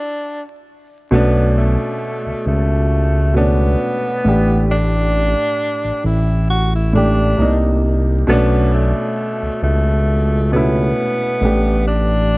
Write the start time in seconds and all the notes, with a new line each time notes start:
Already playing: D4
1.11 B1 B2 A3 B3 C#4
1.15 D4
1.58 A3
2.26 C#2
2.46 C#2 A3
3.34 B2 A3 B3 C#4
3.38 D4
4.24 A1 A2 A3 D4
4.28 G4
4.71 D4
5.84 A1
6.04 A1 E4
6.50 F#4
6.75 E4
6.93 A2 A3 D4
6.97 G4
7.37 C2 C3 A#3 D4
7.41 D#4
8.27 B1 B2 A3 B3 C#4
8.31 D4
8.74 A3
9.42 C#2
9.62 C#2 A3
10.52 B2 A3 B3 C#4
10.56 E4
11.41 A1 A2 A3 D4
11.45 G4
11.87 D4